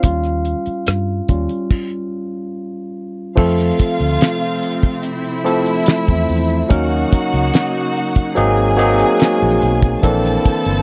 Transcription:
Already playing: F5
0.03 D#2 G3 C#4 F4, kick, closed hi-hat
0.24 cross-stick, closed hi-hat
0.45 closed hi-hat
0.66 muted fingered electric bass stroke, closed hi-hat
0.87 G2, cross-stick, closed hi-hat
1.28 D#2 G3 C#4 F4, kick, closed hi-hat
1.49 closed hi-hat
1.70 kick, crash
3.36 F2 C3 F3 A3 C4 F4 A4 F5, kick, crash
3.59 snare
3.79 kick, closed hi-hat
4.00 D2, closed hi-hat
4.21 snare, closed hi-hat
4.63 closed hi-hat
4.83 kick, closed hi-hat
5.03 E4 E5, closed hi-hat
5.24 closed hi-hat
5.44 F3 A3 C4 E4 A4, closed hi-hat
5.66 closed hi-hat
5.86 snare, closed hi-hat
6.08 E2, kick, closed hi-hat
6.28 E2, open hi-hat
6.50 closed hi-hat
6.69 D#2 C#3 F#3 A#3 C#4 D#4 F#4 A#4 F#5, kick, closed hi-hat
6.90 closed hi-hat
7.12 kick, closed hi-hat
7.33 C#2, closed hi-hat
7.54 snare, closed hi-hat
7.96 open hi-hat
8.15 kick, closed hi-hat
8.35 G#1 F#3 G#3 A#3 C4 D#4 F#4 G#4 G#5, closed hi-hat
8.57 closed hi-hat
8.77 F#3 A#3 C4 D#4 G#4, closed hi-hat
8.99 closed hi-hat
9.20 snare, closed hi-hat
9.42 A#1, closed hi-hat
9.62 B1, closed hi-hat
9.82 kick, closed hi-hat
10.02 A#1 D3 E3 A#3 C4 D4 E4 A4 A5, kick, closed hi-hat
10.24 snare, closed hi-hat
10.45 kick, closed hi-hat
10.65 G1, closed hi-hat

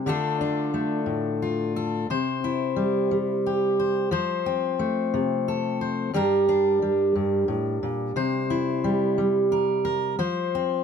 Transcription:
0.06 D3 A3 D4 F4 A4
0.41 D4
0.74 A3
1.06 A2
1.42 F4
1.76 A4
2.10 C3 C5
2.44 E4
2.76 G3
3.11 G3
3.46 G4
3.80 C5
4.11 F3 C5
4.46 C4
4.79 A3
5.14 C3
5.48 A4
5.81 C5
6.14 G2 G3 D4 G4 A#4
6.49 D4
6.82 G3
7.15 G2
7.48 A2
7.83 A#2
8.16 C3 C5
8.50 E4
8.84 G3
9.18 G3
9.52 A#4
9.85 A#4
10.19 F3 C5
10.55 C4

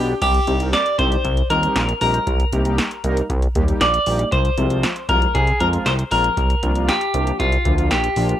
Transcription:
Already playing: B1 B3 D4 G4
0.22 C2 G4, kick, closed hi-hat, crash
0.34 closed hi-hat
0.47 C2 G3 C4 D#4 G4, closed hi-hat
0.60 G3 C4 D#4 A#4, closed hi-hat
0.73 D5, snare, closed hi-hat
0.86 closed hi-hat
0.99 C2 G3 C4 D#4 G4 C5, kick, closed hi-hat
1.12 closed hi-hat
1.25 C2, kick, closed hi-hat
1.37 closed hi-hat
1.50 D#2 G3 C4 D#4 F4 A#4, closed hi-hat
1.63 G3 C4 D#4 G4, closed hi-hat
1.76 A#1, snare, closed hi-hat
1.89 closed hi-hat
2.01 A#1 G3 C4 D#4 G4 A#4, open hi-hat
2.14 closed hi-hat
2.27 C2, kick, closed hi-hat
2.40 closed hi-hat
2.53 C2 G3 A#3 D#4 G4, closed hi-hat
2.65 G3 A#3 D#4 G4, closed hi-hat
2.78 snare, closed hi-hat
2.91 closed hi-hat
3.04 C2 G3 A#3 D#4 A#4, closed hi-hat
3.17 closed hi-hat
3.30 C2, kick, closed hi-hat
3.42 closed hi-hat
3.55 D#2 G3 A#3 D#4 G4, kick, closed hi-hat
3.68 G3 A#3 D#4 G4, closed hi-hat
3.81 A#1 D5, snare, closed hi-hat
3.94 closed hi-hat
4.06 A#1 G3 A#3 D#4 G4, open hi-hat
4.19 closed hi-hat
4.32 C2 C5, kick, closed hi-hat
4.45 closed hi-hat
4.58 C2 F3 G#3 C4 F4, closed hi-hat
4.70 F3 G#3 C4 F4, closed hi-hat
4.83 snare, closed hi-hat
4.96 closed hi-hat
5.09 C2 F3 G#3 C4 F4 A#4, kick, closed hi-hat
5.22 closed hi-hat
5.35 C2 G#4, kick, closed hi-hat
5.47 closed hi-hat
5.60 F2 F3 G#3 C4 F4 A#4, closed hi-hat
5.73 F3 G#3 C4 F4, closed hi-hat
5.86 C2 C5, snare, closed hi-hat
5.99 closed hi-hat
6.11 A#1 F3 G#3 C4 F4 A#4, open hi-hat
6.24 closed hi-hat
6.37 C2, kick, closed hi-hat
6.50 closed hi-hat
6.63 C2 F3 A#3 D4 F4, closed hi-hat
6.75 F3 A#3 D4 F4, closed hi-hat
6.89 G4, snare, closed hi-hat
7.01 closed hi-hat
7.14 C2 F3 A#3 D4 G4, closed hi-hat
7.27 closed hi-hat
7.40 C2 F4, kick, closed hi-hat
7.52 closed hi-hat
7.65 D2 F3 A#3 D4 F4, kick, closed hi-hat
7.78 F3 A#3 D4 F4, closed hi-hat
7.91 A#1 G4, snare, closed hi-hat
8.04 closed hi-hat
8.16 A#1 F3 A#3 D4 F4, open hi-hat
8.29 closed hi-hat

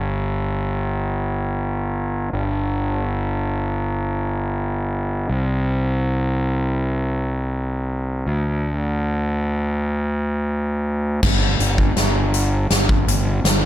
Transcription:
Already playing: G1
2.33 G1
5.29 C2
8.26 D2
11.23 G1, kick, snare, crash
11.59 G1, closed hi-hat
11.78 kick
11.96 G1, snare, closed hi-hat
12.34 closed hi-hat
12.70 G1, snare, closed hi-hat
12.89 kick
13.07 G1, closed hi-hat
13.44 G1, snare, closed hi-hat

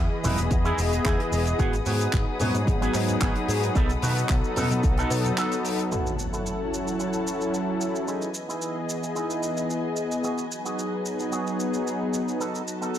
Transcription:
Already playing: G#4 B5 D#6
0.23 E1 E3 B3 D#4 E4 G#4 B4 D#5, open hi-hat, low conga, shaker
0.38 E1, closed hi-hat, shaker
0.51 E2, muted clean electric guitar stroke, kick, closed hi-hat, high conga, shaker
0.65 D#4 E4 G#4, closed hi-hat, shaker
0.78 E1, open hi-hat, shaker
0.92 muted clean electric guitar stroke, closed hi-hat, high conga, shaker
1.05 E2 D#4 E4 G#4, kick, clap, closed hi-hat, shaker
1.20 closed hi-hat
1.32 E1, muted clean electric guitar stroke, open hi-hat, shaker
1.46 closed hi-hat, shaker
1.59 G#1 B3 F#4 G#4 F#5 B5, kick, closed hi-hat, shaker
1.73 closed hi-hat, shaker
1.86 G#2 B3 F#4 G#4, open hi-hat, high conga, shaker
2.01 closed hi-hat, shaker
2.13 G#1, kick, clap, closed hi-hat, shaker
2.39 G#2 F#3 B3 D#4 F#4 G#4, open hi-hat, low conga, shaker
2.55 G#2, closed hi-hat, shaker
2.67 G#1, muted clean electric guitar stroke, kick, closed hi-hat, high conga, shaker
2.81 B3 F#4 G#4, closed hi-hat, shaker
2.94 G#2, clap, open hi-hat, shaker
3.08 muted clean electric guitar stroke, closed hi-hat, high conga, shaker
3.20 G#1 B3 F#4 G#4, kick, clap, closed hi-hat, shaker
3.35 closed hi-hat
3.48 G#2, muted clean electric guitar stroke, open hi-hat, shaker
3.63 closed hi-hat, shaker
3.75 B1 B3 D#4 A4, kick, closed hi-hat, shaker
3.89 closed hi-hat, shaker
4.02 B2 B3 D#4 F#4, open hi-hat, high conga, shaker
4.17 closed hi-hat, shaker
4.29 B1, kick, clap, closed hi-hat, shaker
4.44 shaker
4.55 B2 F#3 B3 D#4 A4, open hi-hat, low conga, shaker
4.71 B2, closed hi-hat, shaker
4.83 B1, muted clean electric guitar stroke, kick, closed hi-hat, high conga, shaker
4.97 B3 D#4 A4, closed hi-hat, shaker
5.11 B2, open hi-hat, shaker
5.24 muted clean electric guitar stroke, closed hi-hat, high conga, shaker
5.37 B3 D#4 A4, clap, closed hi-hat, shaker
5.52 closed hi-hat, shaker
5.64 muted clean electric guitar stroke, open hi-hat, shaker
5.79 closed hi-hat, shaker
5.91 E3 E4 F#4 A4 C#5 F#5 A5, impact, shaker
6.07 shaker
6.19 shaker
6.33 E4 F#4 A4, shaker
6.46 shaker
6.72 F#3 C#4 E4 A4, shaker
6.87 muted clean electric guitar stroke, shaker
6.99 E4 F#4 A4, shaker
7.13 shaker
7.27 shaker
7.41 shaker
7.54 shaker
7.81 shaker
7.95 shaker
8.07 D#4 E4 G#4 B4 D#5 G#5, shaker
8.22 shaker
8.34 shaker
8.49 D#4 E4 G#4, shaker
8.62 shaker
8.88 E3 B3 G#4 D#5, shaker
9.03 muted clean electric guitar stroke, shaker
9.15 D#4 E4 G#4, shaker
9.30 shaker
9.43 shaker
9.57 shaker
9.70 shaker
9.96 shaker
10.11 shaker
10.24 B3 F#4 G#4, shaker
10.38 shaker
10.52 shaker
10.65 B3 F#4 G#4, shaker
10.79 shaker
11.04 F#3 B3 D#4 G#4, shaker
11.19 muted clean electric guitar stroke, shaker
11.32 B3 F#4 G#4, shaker
11.47 shaker
11.60 shaker
11.74 shaker
11.87 shaker
12.14 shaker
12.28 shaker
12.40 B3 D#4 A4 D#5 A5, shaker
12.55 shaker
12.68 shaker
12.81 B3 D#4 A4, shaker
12.95 shaker

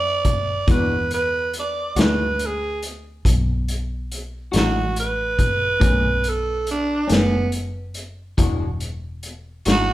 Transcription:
Already playing: F#2 D5
0.25 kick, closed hi-hat
0.67 E2 E3 G#3 D4 F#4 B4, kick, closed hi-hat
1.11 B4, closed hi-hat
1.53 closed hi-hat
1.60 D5
1.96 D2 E3 G#3 D4 F#4, snare, closed hi-hat
2.01 B4
2.39 closed hi-hat
2.46 G#4
2.83 closed hi-hat
3.25 B1, kick, closed hi-hat
3.68 closed hi-hat
4.12 closed hi-hat
4.52 A1 E3 G#3 D4 F#4, closed hi-hat
4.56 F#4, snare
4.96 B4, closed hi-hat
5.39 kick, closed hi-hat
5.80 B1 B2 D#3 A3 C#4, kick, closed hi-hat
6.24 closed hi-hat
6.29 A4
6.67 closed hi-hat
6.71 D4
7.07 F#1 B2 D#3 A3 C#4, closed hi-hat
7.12 B3, snare
7.52 closed hi-hat
7.94 closed hi-hat
8.38 E1 E3 G#3 D4 F#4, kick, closed hi-hat
8.80 closed hi-hat
9.23 closed hi-hat
9.65 G#1 E3 G#3 D4 F#4, snare, closed hi-hat
9.70 F#4

